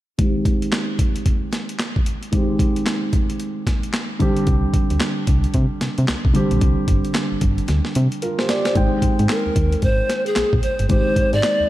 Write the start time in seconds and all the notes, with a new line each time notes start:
0.18 D#3 G#3 C4 G4, kick, closed hi-hat
0.45 kick, closed hi-hat
0.62 closed hi-hat
0.72 snare, clap, closed hi-hat
0.99 kick, closed hi-hat
1.16 closed hi-hat
1.26 kick, closed hi-hat
1.53 snare, closed hi-hat
1.69 closed hi-hat
1.79 snare, clap, closed hi-hat
1.96 kick
2.06 closed hi-hat
2.23 closed hi-hat
2.32 D#3 G#3 C4 G4, kick, closed hi-hat
2.59 kick, closed hi-hat
2.76 closed hi-hat
2.86 snare, clap, closed hi-hat
3.13 kick, closed hi-hat
3.30 closed hi-hat
3.40 closed hi-hat
3.67 kick, snare, closed hi-hat
3.83 closed hi-hat
3.94 snare, clap, closed hi-hat
4.20 D3 G3 C4 G4, kick, closed hi-hat
4.37 closed hi-hat
4.47 C2, kick, closed hi-hat
4.74 kick, closed hi-hat
4.90 D2, closed hi-hat
5.00 snare, clap, closed hi-hat
5.27 C2, kick, closed hi-hat
5.44 closed hi-hat
5.54 C3, kick, closed hi-hat
5.81 C3, snare, closed hi-hat
5.98 C3, closed hi-hat
6.08 C2, snare, clap, closed hi-hat
6.25 C2, kick
6.34 D3 G3 C4 G4, closed hi-hat
6.51 A#1, closed hi-hat
6.61 C2, kick, closed hi-hat
6.88 G1, kick, closed hi-hat
7.05 closed hi-hat
7.15 snare, clap, closed hi-hat
7.32 G1
7.41 G1, kick, closed hi-hat
7.58 closed hi-hat
7.68 D2, snare, closed hi-hat
7.85 snare
7.95 C3, closed hi-hat
8.12 closed hi-hat
8.22 F4 A#4, closed hi-hat
8.39 G4 C5, snare
8.49 G4 D5, snare, closed hi-hat
8.65 G4 C5, snare, closed hi-hat
8.75 G#1 D#3 G#3 C4 G5, kick, closed hi-hat
9.02 G#2, kick, closed hi-hat
9.19 G#2, closed hi-hat
9.29 A#4, snare, clap, closed hi-hat
9.46 D#2
9.56 D#2, kick, closed hi-hat
9.72 closed hi-hat
9.82 G#1 C5, kick, closed hi-hat
10.09 snare, closed hi-hat
10.26 G#4, closed hi-hat
10.36 A#1, snare, clap, closed hi-hat
10.53 A#1, kick
10.63 C5, closed hi-hat
10.79 G1, closed hi-hat
10.89 G#1 D#3 G#3 C4 G4 C5, kick, closed hi-hat
11.16 G#2, kick, closed hi-hat
11.33 G#2 D5, closed hi-hat
11.43 snare, clap, closed hi-hat
11.60 D#2